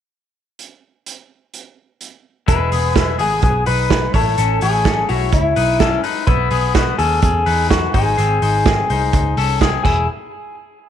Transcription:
0.59 closed hi-hat soft
1.06 closed hi-hat medium
1.54 closed hi-hat soft
2.01 closed hi-hat soft
2.48 2.68 E1 loud
2.48 2.72 G#3 medium
2.48 2.72 E4 medium
2.48 3.15 B4 medium
2.48 kick loud
2.48 closed hi-hat medium
2.72 3.20 E1 medium
2.72 2.96 B3 medium
2.72 2.95 G#4 medium
2.72 open hi-hat medium
2.95 3.20 G#3 medium
2.95 3.18 E4 medium
2.95 kick loud
2.95 snare loud
2.95 closed hi-hat medium
3.19 3.40 G#1 medium
3.19 3.64 B3 medium
3.19 3.64 G#4 medium
3.19 3.43 G#4 medium
3.19 open hi-hat medium
3.42 3.63 B1 medium
3.42 3.65 G#4 medium
3.42 kick loud
3.42 closed hi-hat medium
3.66 4.07 B1 medium
3.66 4.12 D#4 medium
3.66 4.11 B4 medium
3.66 4.15 B4 loud
3.66 open hi-hat medium
3.90 kick medium
3.90 snare loud
3.90 closed hi-hat medium
4.14 4.34 A1 medium
4.14 4.38 E4 medium
4.14 4.59 A4 medium
4.14 4.38 C#5 medium
4.14 kick loud
4.14 open hi-hat medium
4.38 4.58 A1 loud
4.38 4.62 C#4 medium
4.38 4.62 A4 medium
4.38 closed hi-hat medium
4.61 5.02 A1 medium
4.61 4.86 E4 medium
4.61 5.06 G#4 medium
4.61 4.86 C#5 medium
4.61 open hi-hat medium
4.85 5.09 C#4 medium
4.85 5.09 A4 medium
4.85 kick loud
4.85 snare loud
4.85 closed hi-hat medium
5.09 5.30 B1 medium
5.09 5.54 E4 medium
5.09 5.33 F#4 medium
5.09 5.53 C#5 medium
5.09 open hi-hat medium
5.32 5.53 C#2 medium
5.32 6.00 E4 medium
5.32 kick loud
5.32 closed hi-hat medium
5.56 5.97 B1 medium
5.56 5.80 D#4 medium
5.56 5.80 B4 medium
5.56 open hi-hat medium
5.80 6.04 C#4 medium
5.80 6.03 A4 medium
5.80 kick medium
5.80 snare medium
5.80 closed hi-hat medium
6.04 6.28 D#4 medium
6.04 6.27 B4 medium
6.04 open hi-hat medium
6.27 6.48 B1 medium
6.27 6.51 B3 medium
6.27 6.51 E4 loud
6.27 6.98 B4 medium
6.27 kick loud
6.27 closed hi-hat medium
6.51 6.92 B1 medium
6.51 6.75 B3 medium
6.51 6.75 G#4 medium
6.51 open hi-hat medium
6.75 6.99 B3 medium
6.75 6.98 F#4 medium
6.75 kick loud
6.75 snare loud
6.75 closed hi-hat medium
6.98 7.19 D#2 medium
6.98 7.44 C#4 medium
6.98 7.22 G#4 medium
6.98 7.43 A4 medium
6.98 open hi-hat medium
7.22 7.43 E2 medium
7.22 7.67 G#4 medium
7.22 kick loud
7.22 closed hi-hat medium
7.46 7.87 E2 medium
7.46 7.91 D#4 medium
7.46 7.91 B4 medium
7.46 open hi-hat medium
7.70 7.94 F#4 medium
7.70 kick medium
7.70 snare medium
7.70 closed hi-hat medium
7.94 8.14 G#1 medium
7.94 8.18 D#4 medium
7.94 9.57 G#4 medium
7.94 8.18 C5 medium
7.94 kick medium
7.94 open hi-hat medium
8.18 8.38 G#1 medium
8.18 8.42 C4 medium
8.18 8.41 G#4 medium
8.18 closed hi-hat medium
8.42 8.82 G#1 medium
8.42 8.66 D#4 medium
8.42 8.66 C5 medium
8.42 open hi-hat medium
8.66 8.90 C4 medium
8.66 8.89 G#4 medium
8.66 kick loud
8.66 snare loud
8.66 closed hi-hat medium
8.90 9.10 C2 medium
8.90 9.35 D#4 medium
8.90 9.34 C5 medium
8.90 open hi-hat medium
9.13 9.33 C#2 medium
9.13 kick loud
9.13 closed hi-hat medium
9.37 9.77 C2 medium
9.37 9.61 C#4 medium
9.37 9.61 A4 medium
9.37 open hi-hat medium
9.61 9.85 C4 medium
9.61 9.84 G#4 medium
9.61 kick medium
9.61 snare medium
9.61 closed hi-hat medium
9.84 10.07 E1 medium
9.84 10.07 E4 medium
9.84 10.06 G#4 medium
9.84 kick medium
9.84 crash medium

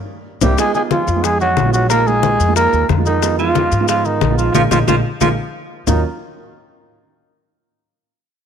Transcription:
0.41 0.54 C2 loud
0.41 0.57 G3 medium
0.41 0.52 A#3 medium
0.41 0.52 C4 loud
0.41 0.52 E4 medium
0.41 0.57 G4 medium
0.41 low bongo loud
0.41 low conga loud
0.41 maracas loud
0.58 0.69 G#3 medium
0.58 0.74 G#3 medium
0.58 0.70 B3 medium
0.58 0.70 D#4 medium
0.58 0.70 F4 medium
0.58 0.74 G#4 loud
0.58 high bongo medium
0.58 high conga soft
0.58 maracas medium
0.74 1.03 G#3 medium
0.74 0.83 G#3 medium
0.74 1.03 B3 medium
0.74 1.03 D#4 medium
0.74 1.04 F4 medium
0.74 0.82 G#4 medium
0.74 high bongo soft
0.74 high conga soft
0.74 maracas soft
0.91 1.27 F3 medium
0.91 1.25 F4 medium
0.91 high bongo medium
0.91 high conga loud
0.91 maracas soft
1.08 1.54 F2 medium
1.08 high bongo soft
1.08 maracas medium
1.15 1.50 G#3 medium
1.15 1.50 B3 medium
1.15 1.51 D#4 medium
1.15 1.51 G#4 medium
1.24 1.41 G#3 medium
1.24 1.40 G#4 loud
1.24 high bongo medium
1.24 high conga soft
1.24 maracas medium
1.40 1.72 F#3 medium
1.40 1.71 F#4 loud
1.40 high bongo soft
1.40 high conga soft
1.40 maracas soft
1.57 2.34 A#1 medium
1.57 high bongo medium
1.57 low bongo medium
1.57 high conga medium
1.57 maracas soft
1.65 1.82 G#3 medium
1.65 1.83 B3 medium
1.65 1.83 D#4 medium
1.65 1.83 F4 medium
1.73 1.90 F#3 medium
1.73 1.89 F#4 medium
1.73 high conga soft
1.73 maracas medium
1.90 2.01 G#3 medium
1.90 2.02 A#3 medium
1.90 2.09 A#3 loud
1.90 2.02 D#4 medium
1.90 2.02 F4 medium
1.90 2.08 A#4 loud
1.90 high bongo medium
1.90 high conga soft
1.90 maracas medium
2.07 2.35 G#3 medium
2.07 2.56 G#3 medium
2.07 2.36 A#3 medium
2.07 2.36 D#4 medium
2.07 2.36 F4 medium
2.07 2.55 G#4 loud
2.07 high conga soft
2.07 maracas soft
2.23 high bongo medium
2.23 high conga medium
2.23 maracas soft
2.39 2.70 F2 medium
2.39 high bongo soft
2.39 high conga soft
2.39 maracas medium
2.48 2.82 G#3 medium
2.48 2.83 A#3 medium
2.48 2.83 D#4 medium
2.48 2.83 F4 medium
2.56 2.87 A#3 medium
2.56 2.87 A#4 loud
2.56 high bongo medium
2.56 high conga soft
2.56 maracas medium
2.73 2.88 D#2 medium
2.73 high bongo soft
2.73 high conga soft
2.73 maracas soft
2.89 3.66 F2 medium
2.89 high bongo medium
2.89 low bongo medium
2.89 high conga medium
2.89 maracas soft
2.97 3.15 G#3 medium
2.97 3.15 A#3 medium
2.97 3.15 D#4 medium
2.97 3.15 F4 medium
3.06 3.37 D#3 medium
3.06 3.36 D#4 medium
3.06 high bongo soft
3.06 high conga soft
3.06 maracas medium
3.22 3.34 G#3 medium
3.22 3.34 B3 medium
3.22 3.34 D#4 medium
3.22 3.34 F4 medium
3.22 high bongo medium
3.22 high conga soft
3.22 maracas medium
3.38 3.85 F3 medium
3.38 3.67 G#3 medium
3.38 3.68 B3 medium
3.38 3.68 D#4 medium
3.38 3.85 F4 medium
3.38 3.68 F4 medium
3.38 high bongo soft
3.38 high conga soft
3.38 maracas soft
3.55 high bongo medium
3.55 high conga medium
3.55 maracas soft
3.72 4.18 G#2 medium
3.72 high bongo soft
3.72 maracas medium
3.80 4.15 G#3 medium
3.80 4.15 B3 medium
3.80 4.15 D#4 medium
3.80 4.15 F4 medium
3.88 4.07 F3 medium
3.88 4.07 F4 medium
3.88 high bongo medium
3.88 high conga soft
3.88 maracas medium
4.05 4.38 D#3 medium
4.05 4.37 D#4 medium
4.05 high bongo soft
4.05 high conga soft
4.05 maracas soft
4.21 4.52 A#1 medium
4.21 high bongo medium
4.21 low bongo medium
4.21 high conga medium
4.21 maracas soft
4.29 4.47 G#3 medium
4.29 4.47 B3 medium
4.29 4.47 D#4 medium
4.29 4.47 F4 medium
4.38 4.54 F3 medium
4.38 4.53 F4 medium
4.38 high conga soft
4.38 maracas medium
4.54 4.67 A#1 medium
4.54 4.63 F3 medium
4.54 4.65 G#3 medium
4.54 4.65 A#3 medium
4.54 4.65 D#4 medium
4.54 4.63 F4 medium
4.54 high bongo medium
4.54 high conga loud
4.54 maracas medium
4.71 4.83 A#1 medium
4.71 4.79 F3 medium
4.71 4.82 G#3 medium
4.71 4.82 A#3 medium
4.71 4.82 D#4 medium
4.71 4.79 F4 medium
4.71 high bongo medium
4.71 high conga medium
4.71 maracas medium
4.87 5.00 A#1 medium
4.87 4.96 F3 medium
4.87 4.98 G#3 medium
4.87 4.98 A#3 medium
4.87 4.98 D#4 medium
4.87 4.96 F4 loud
4.87 high bongo medium
4.87 high conga loud
4.87 maracas loud
5.21 5.33 A#1 medium
5.21 5.29 F3 medium
5.21 5.31 G#3 medium
5.21 5.31 A#3 medium
5.21 5.31 D#4 medium
5.21 5.29 F4 medium
5.21 high bongo medium
5.21 high conga loud
5.21 maracas medium
5.87 6.02 D#2 medium
5.87 6.03 D#3 medium
5.87 6.02 F#3 medium
5.87 6.02 A#3 medium
5.87 6.02 C#4 medium
5.87 6.03 D#4 medium
5.87 6.02 F4 medium
5.87 low bongo medium
5.87 low conga medium
5.87 maracas medium

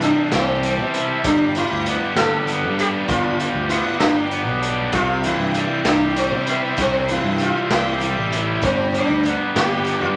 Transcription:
0.00 0.12 G2 medium
0.00 0.94 C3 medium
0.00 1.25 E3 medium
0.00 0.62 G3 medium
0.00 0.34 D4 medium
0.00 0.63 E4 medium
0.00 0.31 G4 medium
0.00 1.19 E5 medium
0.00 1.23 A5 medium
0.00 1.20 C6 medium
0.00 closed hi-hat medium
0.00 tambourine medium
0.32 0.80 C2 loud
0.32 0.80 C4 medium
0.32 2.17 G4 medium
0.32 snare loud
0.32 closed hi-hat medium
0.63 1.56 G3 medium
0.63 closed hi-hat medium
0.63 tambourine loud
0.78 1.18 C3 medium
0.78 0.99 B3 medium
0.94 1.25 E4 medium
0.94 closed hi-hat medium
0.94 tambourine soft
1.24 1.64 G1 loud
1.24 2.79 G2 medium
1.24 1.57 D4 loud
1.24 4.90 D5 medium
1.24 10.16 G5 medium
1.24 4.90 B5 medium
1.24 kick loud
1.24 closed hi-hat loud
1.24 tambourine medium
1.55 3.38 G3 medium
1.55 2.20 E4 medium
1.55 closed hi-hat medium
1.72 1.97 D2 medium
1.86 2.46 B3 medium
1.86 closed hi-hat medium
1.86 tambourine medium
2.16 2.64 G1 loud
2.16 4.00 G4 medium
2.16 2.74 A4 loud
2.16 snare loud
2.16 closed hi-hat medium
2.47 3.69 B3 medium
2.47 closed hi-hat medium
2.47 tambourine medium
2.63 3.02 G2 medium
2.63 tambourine soft
2.78 4.32 D4 medium
2.78 2.88 G4 medium
2.78 closed hi-hat medium
2.78 tambourine soft
3.08 3.48 G1 loud
3.08 4.63 G2 medium
3.08 3.72 F4 loud
3.08 kick loud
3.08 closed hi-hat medium
3.08 tambourine medium
3.39 5.24 G3 medium
3.39 closed hi-hat medium
3.54 3.81 D2 medium
3.54 tambourine soft
3.69 4.31 B3 medium
3.69 3.99 E4 medium
3.69 closed hi-hat medium
3.86 tambourine soft
3.99 4.47 G1 medium
3.99 4.65 D4 medium
3.99 5.85 G4 medium
3.99 snare loud
3.99 closed hi-hat medium
4.17 tambourine soft
4.31 4.93 B3 medium
4.31 closed hi-hat medium
4.31 tambourine loud
4.47 4.86 B1 medium
4.47 tambourine soft
4.63 4.93 D4 medium
4.63 closed hi-hat medium
4.92 5.33 C2 loud
4.92 6.47 C3 medium
4.92 5.25 F4 medium
4.92 8.58 E5 medium
4.92 8.59 C6 medium
4.92 kick loud
4.92 closed hi-hat medium
4.92 tambourine loud
5.23 6.78 E3 medium
5.23 5.86 E4 medium
5.23 closed hi-hat medium
5.39 5.65 G2 medium
5.54 6.16 G3 medium
5.54 closed hi-hat medium
5.54 tambourine medium
5.85 6.33 C2 loud
5.85 6.15 D4 medium
5.85 7.70 G4 medium
5.85 snare loud
5.85 closed hi-hat medium
6.16 7.39 G3 medium
6.16 6.45 C4 medium
6.16 closed hi-hat medium
6.16 tambourine loud
6.31 6.71 C3 medium
6.46 6.80 B3 medium
6.46 8.00 E4 medium
6.46 closed hi-hat medium
6.46 tambourine soft
6.76 7.17 C2 loud
6.76 8.32 C3 medium
6.76 kick loud
6.76 closed hi-hat medium
6.76 tambourine medium
6.81 7.08 C4 medium
7.08 8.62 E3 medium
7.08 7.41 E4 medium
7.08 closed hi-hat medium
7.24 7.50 G2 medium
7.38 8.02 G3 medium
7.38 closed hi-hat medium
7.38 tambourine medium
7.42 7.72 F4 medium
7.70 8.17 C2 loud
7.70 8.37 E4 medium
7.70 9.55 G4 medium
7.70 snare loud
7.70 closed hi-hat medium
8.00 8.95 G3 medium
8.00 closed hi-hat medium
8.00 tambourine medium
8.16 8.56 A1 medium
8.16 tambourine soft
8.32 8.62 E4 medium
8.32 closed hi-hat medium
8.32 tambourine soft
8.62 9.02 G1 loud
8.62 10.16 G2 medium
8.62 8.95 C4 medium
8.62 10.16 D5 medium
8.62 10.16 B5 medium
8.62 kick loud
8.62 closed hi-hat medium
8.62 tambourine medium
8.94 10.16 G3 medium
8.94 9.59 D4 medium
8.94 closed hi-hat medium
9.09 9.35 D2 medium
9.23 9.85 B3 medium
9.23 closed hi-hat medium
9.23 tambourine medium
9.55 10.03 G1 loud
9.55 10.16 G4 medium
9.55 10.01 G4 medium
9.55 snare loud
9.55 closed hi-hat medium
9.85 10.16 B3 medium
9.85 closed hi-hat medium
9.85 tambourine medium
10.00 10.16 G2 medium
10.00 10.06 F4 medium
10.00 tambourine soft

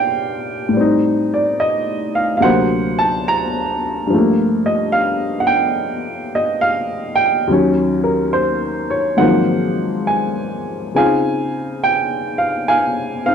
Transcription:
0.00 0.74 A#2 soft
0.00 0.72 G3 soft
0.00 0.75 C4 soft
0.00 0.75 D4 soft
0.00 0.72 G4 medium
0.00 0.76 C5 medium
0.00 0.77 D5 medium
0.00 0.76 F5 medium
0.00 0.55 G5 medium
0.69 2.42 A2 soft
0.73 2.44 G3 soft
0.73 2.46 C4 soft
0.81 2.48 D#4 medium
1.34 1.59 D5 medium
1.60 2.12 D#5 medium
2.15 2.36 F5 medium
2.37 4.11 D2 soft
2.37 2.43 F5 medium
2.42 4.12 C3 soft
2.42 4.13 F#3 soft
2.42 4.14 A#3 medium
2.42 4.09 C5 medium
2.42 3.01 F#5 medium
2.99 3.26 A5 medium
3.28 3.94 A#5 medium
4.07 7.46 G2 medium
4.07 7.48 F3 soft
4.14 7.50 A3 soft
4.14 7.52 A#3 medium
4.66 4.93 D#5 medium
4.92 5.37 F5 medium
5.40 5.50 F#5 medium
5.47 5.75 G5 medium
6.35 6.62 D#5 medium
6.61 7.21 F5 medium
7.15 7.45 G5 medium
7.47 9.19 D#2 medium
7.47 9.17 D#3 medium
7.47 9.18 F#3 medium
7.52 9.21 C#4 medium
8.04 8.10 A#4 medium
8.33 8.86 C5 medium
8.90 9.21 C#5 medium
9.17 10.95 G#2 soft
9.17 10.95 D#3 soft
9.17 10.96 F#3 soft
9.17 10.96 A#3 soft
9.17 10.92 C5 medium
9.17 10.02 F#5 medium
9.21 10.97 F3 medium
9.21 10.94 C4 soft
10.07 10.92 G#5 medium
10.95 13.35 C#3 soft
10.95 13.24 C4 soft
10.95 13.27 D#4 soft
10.95 13.35 F4 soft
10.95 12.37 F5 medium
10.95 11.80 G#5 medium
11.83 12.37 G5 medium
12.38 12.68 F5 medium
12.68 13.25 F5 medium
12.68 13.22 G#5 medium
13.26 13.35 C4 soft
13.26 13.35 D#4 soft
13.26 13.35 F5 medium

